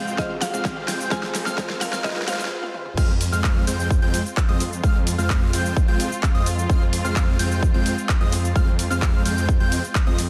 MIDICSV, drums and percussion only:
0, 0, Header, 1, 2, 480
1, 0, Start_track
1, 0, Key_signature, -4, "minor"
1, 0, Tempo, 465116
1, 1150, Time_signature, 4, 2, 24, 8
1, 10625, End_track
2, 0, Start_track
2, 0, Title_t, "Drums"
2, 78, Note_on_c, 9, 69, 42
2, 181, Note_off_c, 9, 69, 0
2, 189, Note_on_c, 9, 36, 121
2, 190, Note_on_c, 9, 38, 80
2, 198, Note_on_c, 9, 69, 32
2, 292, Note_off_c, 9, 36, 0
2, 293, Note_off_c, 9, 38, 0
2, 301, Note_off_c, 9, 69, 0
2, 430, Note_on_c, 9, 38, 82
2, 430, Note_on_c, 9, 46, 110
2, 437, Note_on_c, 9, 69, 76
2, 533, Note_off_c, 9, 38, 0
2, 533, Note_off_c, 9, 46, 0
2, 540, Note_off_c, 9, 69, 0
2, 557, Note_on_c, 9, 69, 46
2, 660, Note_off_c, 9, 69, 0
2, 669, Note_on_c, 9, 36, 124
2, 669, Note_on_c, 9, 38, 89
2, 677, Note_on_c, 9, 69, 33
2, 772, Note_off_c, 9, 36, 0
2, 772, Note_off_c, 9, 38, 0
2, 780, Note_off_c, 9, 69, 0
2, 909, Note_on_c, 9, 38, 88
2, 909, Note_on_c, 9, 46, 110
2, 917, Note_on_c, 9, 69, 78
2, 1012, Note_off_c, 9, 38, 0
2, 1012, Note_off_c, 9, 46, 0
2, 1020, Note_off_c, 9, 69, 0
2, 1036, Note_on_c, 9, 69, 41
2, 1140, Note_off_c, 9, 69, 0
2, 1149, Note_on_c, 9, 36, 126
2, 1150, Note_on_c, 9, 38, 90
2, 1157, Note_on_c, 9, 69, 32
2, 1252, Note_off_c, 9, 36, 0
2, 1253, Note_off_c, 9, 38, 0
2, 1260, Note_off_c, 9, 69, 0
2, 1270, Note_on_c, 9, 38, 81
2, 1373, Note_off_c, 9, 38, 0
2, 1389, Note_on_c, 9, 38, 92
2, 1389, Note_on_c, 9, 46, 110
2, 1397, Note_on_c, 9, 69, 78
2, 1492, Note_off_c, 9, 38, 0
2, 1492, Note_off_c, 9, 46, 0
2, 1500, Note_off_c, 9, 69, 0
2, 1509, Note_on_c, 9, 38, 83
2, 1517, Note_on_c, 9, 69, 44
2, 1613, Note_off_c, 9, 38, 0
2, 1620, Note_off_c, 9, 69, 0
2, 1628, Note_on_c, 9, 36, 126
2, 1630, Note_on_c, 9, 38, 98
2, 1637, Note_on_c, 9, 69, 33
2, 1732, Note_off_c, 9, 36, 0
2, 1733, Note_off_c, 9, 38, 0
2, 1740, Note_off_c, 9, 69, 0
2, 1749, Note_on_c, 9, 38, 86
2, 1853, Note_off_c, 9, 38, 0
2, 1870, Note_on_c, 9, 38, 93
2, 1870, Note_on_c, 9, 46, 105
2, 1877, Note_on_c, 9, 69, 76
2, 1973, Note_off_c, 9, 38, 0
2, 1973, Note_off_c, 9, 46, 0
2, 1980, Note_off_c, 9, 69, 0
2, 1989, Note_on_c, 9, 38, 85
2, 1997, Note_on_c, 9, 69, 42
2, 2092, Note_off_c, 9, 38, 0
2, 2100, Note_off_c, 9, 69, 0
2, 2108, Note_on_c, 9, 36, 123
2, 2109, Note_on_c, 9, 38, 98
2, 2116, Note_on_c, 9, 69, 30
2, 2169, Note_off_c, 9, 38, 0
2, 2169, Note_on_c, 9, 38, 86
2, 2212, Note_off_c, 9, 36, 0
2, 2220, Note_off_c, 9, 69, 0
2, 2229, Note_off_c, 9, 38, 0
2, 2229, Note_on_c, 9, 38, 91
2, 2289, Note_off_c, 9, 38, 0
2, 2289, Note_on_c, 9, 38, 90
2, 2349, Note_off_c, 9, 38, 0
2, 2349, Note_on_c, 9, 38, 108
2, 2349, Note_on_c, 9, 46, 109
2, 2356, Note_on_c, 9, 69, 74
2, 2409, Note_off_c, 9, 38, 0
2, 2409, Note_on_c, 9, 38, 96
2, 2452, Note_off_c, 9, 46, 0
2, 2460, Note_off_c, 9, 69, 0
2, 2470, Note_off_c, 9, 38, 0
2, 2470, Note_on_c, 9, 38, 95
2, 2477, Note_on_c, 9, 69, 45
2, 2530, Note_off_c, 9, 38, 0
2, 2530, Note_on_c, 9, 38, 98
2, 2580, Note_off_c, 9, 69, 0
2, 2633, Note_off_c, 9, 38, 0
2, 2710, Note_on_c, 9, 48, 54
2, 2813, Note_off_c, 9, 48, 0
2, 2829, Note_on_c, 9, 47, 79
2, 2933, Note_off_c, 9, 47, 0
2, 2950, Note_on_c, 9, 45, 80
2, 3053, Note_off_c, 9, 45, 0
2, 3070, Note_on_c, 9, 36, 117
2, 3070, Note_on_c, 9, 49, 105
2, 3077, Note_on_c, 9, 69, 35
2, 3173, Note_off_c, 9, 36, 0
2, 3173, Note_off_c, 9, 49, 0
2, 3180, Note_off_c, 9, 69, 0
2, 3310, Note_on_c, 9, 46, 110
2, 3317, Note_on_c, 9, 69, 81
2, 3413, Note_off_c, 9, 46, 0
2, 3420, Note_off_c, 9, 69, 0
2, 3438, Note_on_c, 9, 69, 47
2, 3541, Note_off_c, 9, 69, 0
2, 3550, Note_on_c, 9, 36, 123
2, 3550, Note_on_c, 9, 39, 127
2, 3558, Note_on_c, 9, 69, 35
2, 3653, Note_off_c, 9, 36, 0
2, 3654, Note_off_c, 9, 39, 0
2, 3661, Note_off_c, 9, 69, 0
2, 3790, Note_on_c, 9, 46, 100
2, 3798, Note_on_c, 9, 69, 81
2, 3893, Note_off_c, 9, 46, 0
2, 3901, Note_off_c, 9, 69, 0
2, 3918, Note_on_c, 9, 69, 46
2, 4021, Note_off_c, 9, 69, 0
2, 4030, Note_on_c, 9, 36, 121
2, 4038, Note_on_c, 9, 69, 36
2, 4133, Note_off_c, 9, 36, 0
2, 4141, Note_off_c, 9, 69, 0
2, 4270, Note_on_c, 9, 46, 101
2, 4278, Note_on_c, 9, 69, 81
2, 4373, Note_off_c, 9, 46, 0
2, 4381, Note_off_c, 9, 69, 0
2, 4398, Note_on_c, 9, 69, 47
2, 4501, Note_off_c, 9, 69, 0
2, 4510, Note_on_c, 9, 36, 115
2, 4511, Note_on_c, 9, 39, 127
2, 4518, Note_on_c, 9, 69, 37
2, 4613, Note_off_c, 9, 36, 0
2, 4614, Note_off_c, 9, 39, 0
2, 4622, Note_off_c, 9, 69, 0
2, 4751, Note_on_c, 9, 46, 106
2, 4758, Note_on_c, 9, 69, 86
2, 4854, Note_off_c, 9, 46, 0
2, 4861, Note_off_c, 9, 69, 0
2, 4878, Note_on_c, 9, 69, 47
2, 4981, Note_off_c, 9, 69, 0
2, 4990, Note_on_c, 9, 36, 127
2, 4998, Note_on_c, 9, 69, 35
2, 5093, Note_off_c, 9, 36, 0
2, 5101, Note_off_c, 9, 69, 0
2, 5231, Note_on_c, 9, 46, 113
2, 5238, Note_on_c, 9, 69, 82
2, 5334, Note_off_c, 9, 46, 0
2, 5341, Note_off_c, 9, 69, 0
2, 5358, Note_on_c, 9, 69, 47
2, 5462, Note_off_c, 9, 69, 0
2, 5470, Note_on_c, 9, 36, 126
2, 5470, Note_on_c, 9, 39, 125
2, 5478, Note_on_c, 9, 69, 35
2, 5573, Note_off_c, 9, 36, 0
2, 5574, Note_off_c, 9, 39, 0
2, 5581, Note_off_c, 9, 69, 0
2, 5710, Note_on_c, 9, 46, 108
2, 5718, Note_on_c, 9, 69, 81
2, 5814, Note_off_c, 9, 46, 0
2, 5821, Note_off_c, 9, 69, 0
2, 5837, Note_on_c, 9, 69, 44
2, 5940, Note_off_c, 9, 69, 0
2, 5950, Note_on_c, 9, 36, 127
2, 5957, Note_on_c, 9, 69, 35
2, 6053, Note_off_c, 9, 36, 0
2, 6061, Note_off_c, 9, 69, 0
2, 6190, Note_on_c, 9, 46, 108
2, 6197, Note_on_c, 9, 69, 81
2, 6293, Note_off_c, 9, 46, 0
2, 6301, Note_off_c, 9, 69, 0
2, 6317, Note_on_c, 9, 69, 47
2, 6420, Note_off_c, 9, 69, 0
2, 6430, Note_on_c, 9, 36, 126
2, 6430, Note_on_c, 9, 39, 127
2, 6437, Note_on_c, 9, 69, 34
2, 6533, Note_off_c, 9, 36, 0
2, 6533, Note_off_c, 9, 39, 0
2, 6541, Note_off_c, 9, 69, 0
2, 6670, Note_on_c, 9, 46, 109
2, 6677, Note_on_c, 9, 69, 82
2, 6773, Note_off_c, 9, 46, 0
2, 6781, Note_off_c, 9, 69, 0
2, 6797, Note_on_c, 9, 69, 46
2, 6901, Note_off_c, 9, 69, 0
2, 6910, Note_on_c, 9, 36, 127
2, 6918, Note_on_c, 9, 69, 34
2, 7013, Note_off_c, 9, 36, 0
2, 7021, Note_off_c, 9, 69, 0
2, 7150, Note_on_c, 9, 46, 110
2, 7158, Note_on_c, 9, 69, 77
2, 7254, Note_off_c, 9, 46, 0
2, 7261, Note_off_c, 9, 69, 0
2, 7278, Note_on_c, 9, 69, 44
2, 7381, Note_off_c, 9, 69, 0
2, 7390, Note_on_c, 9, 36, 127
2, 7390, Note_on_c, 9, 39, 123
2, 7397, Note_on_c, 9, 69, 35
2, 7493, Note_off_c, 9, 36, 0
2, 7493, Note_off_c, 9, 39, 0
2, 7501, Note_off_c, 9, 69, 0
2, 7630, Note_on_c, 9, 46, 115
2, 7637, Note_on_c, 9, 69, 78
2, 7733, Note_off_c, 9, 46, 0
2, 7741, Note_off_c, 9, 69, 0
2, 7757, Note_on_c, 9, 69, 42
2, 7860, Note_off_c, 9, 69, 0
2, 7870, Note_on_c, 9, 36, 127
2, 7877, Note_on_c, 9, 69, 31
2, 7973, Note_off_c, 9, 36, 0
2, 7980, Note_off_c, 9, 69, 0
2, 8110, Note_on_c, 9, 46, 111
2, 8117, Note_on_c, 9, 69, 73
2, 8213, Note_off_c, 9, 46, 0
2, 8220, Note_off_c, 9, 69, 0
2, 8237, Note_on_c, 9, 69, 45
2, 8340, Note_off_c, 9, 69, 0
2, 8349, Note_on_c, 9, 36, 121
2, 8350, Note_on_c, 9, 39, 127
2, 8358, Note_on_c, 9, 69, 35
2, 8453, Note_off_c, 9, 36, 0
2, 8454, Note_off_c, 9, 39, 0
2, 8461, Note_off_c, 9, 69, 0
2, 8590, Note_on_c, 9, 46, 112
2, 8598, Note_on_c, 9, 69, 80
2, 8694, Note_off_c, 9, 46, 0
2, 8701, Note_off_c, 9, 69, 0
2, 8718, Note_on_c, 9, 69, 45
2, 8821, Note_off_c, 9, 69, 0
2, 8830, Note_on_c, 9, 36, 126
2, 8838, Note_on_c, 9, 69, 31
2, 8933, Note_off_c, 9, 36, 0
2, 8941, Note_off_c, 9, 69, 0
2, 9071, Note_on_c, 9, 46, 111
2, 9078, Note_on_c, 9, 69, 77
2, 9174, Note_off_c, 9, 46, 0
2, 9181, Note_off_c, 9, 69, 0
2, 9199, Note_on_c, 9, 69, 41
2, 9302, Note_off_c, 9, 69, 0
2, 9309, Note_on_c, 9, 36, 127
2, 9311, Note_on_c, 9, 39, 118
2, 9318, Note_on_c, 9, 69, 33
2, 9413, Note_off_c, 9, 36, 0
2, 9414, Note_off_c, 9, 39, 0
2, 9421, Note_off_c, 9, 69, 0
2, 9551, Note_on_c, 9, 46, 105
2, 9558, Note_on_c, 9, 69, 73
2, 9654, Note_off_c, 9, 46, 0
2, 9661, Note_off_c, 9, 69, 0
2, 9678, Note_on_c, 9, 69, 43
2, 9781, Note_off_c, 9, 69, 0
2, 9789, Note_on_c, 9, 36, 127
2, 9798, Note_on_c, 9, 69, 31
2, 9893, Note_off_c, 9, 36, 0
2, 9901, Note_off_c, 9, 69, 0
2, 10031, Note_on_c, 9, 46, 109
2, 10038, Note_on_c, 9, 69, 78
2, 10134, Note_off_c, 9, 46, 0
2, 10141, Note_off_c, 9, 69, 0
2, 10158, Note_on_c, 9, 69, 43
2, 10261, Note_off_c, 9, 69, 0
2, 10270, Note_on_c, 9, 36, 125
2, 10271, Note_on_c, 9, 39, 125
2, 10279, Note_on_c, 9, 69, 33
2, 10373, Note_off_c, 9, 36, 0
2, 10374, Note_off_c, 9, 39, 0
2, 10382, Note_off_c, 9, 69, 0
2, 10511, Note_on_c, 9, 46, 111
2, 10518, Note_on_c, 9, 69, 73
2, 10614, Note_off_c, 9, 46, 0
2, 10621, Note_off_c, 9, 69, 0
2, 10625, End_track
0, 0, End_of_file